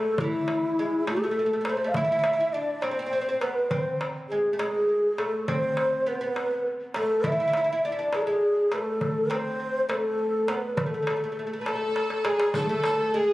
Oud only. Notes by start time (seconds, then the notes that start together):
Already playing: A3
0.20 E3
0.79 G#3
1.08 A3
1.16 A3
1.24 A3
1.31 A3
1.39 A3
1.46 A3
1.53 A3
1.61 A3
1.69 A3
1.77 A3
1.84 A3
1.97 E4
2.04 E4
2.12 E4
2.19 E4
2.25 E4
2.33 E4
2.40 E4
2.54 D4
2.83 C4
2.91 C4
2.99 C4
3.06 C4
3.13 C4
3.21 C4
3.29 C4
3.42 B3
3.71 C4
4.32 G#3
4.53 A3
4.59 G#3
5.19 A3
5.48 C4
6.06 B3
6.21 B3
6.96 A3
7.25 E4
7.32 E4
7.40 E4
7.48 E4
7.57 E4
7.64 E4
7.72 E4
7.85 D4
7.92 E4
7.99 D4
8.14 G#3
8.27 G#3
8.72 A3
9.30 C4
9.89 A3
10.48 B3
10.77 A3
10.86 A3
10.94 A3
11.02 A3
11.10 A3
11.17 A3
11.24 A3
11.32 A3
11.39 A3
11.47 A3
11.53 A3
11.61 A3
11.68 A3
11.76 A3
12.25 G#3
12.54 A3
12.69 A3
13.14 G#3